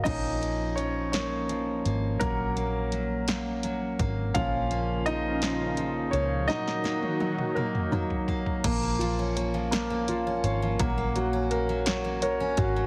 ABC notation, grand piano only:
X:1
M:6/8
L:1/8
Q:3/8=56
K:Bbm
V:1 name="Grand piano"
[Ee]2 [Dd] [Dd]2 z | B3 z3 | [Ff]2 [Ee]3 [Dd] | [Ee]3 [B,B]2 z |
z6 | z4 d2 |]
V:2 name="Grand piano"
[F,B,D]6 | [G,B,D] z4 z | [F,B,D] z4 z | [G,B,] z3 [G,B,E] z |
B, F d B, F d | B, G B d B G |]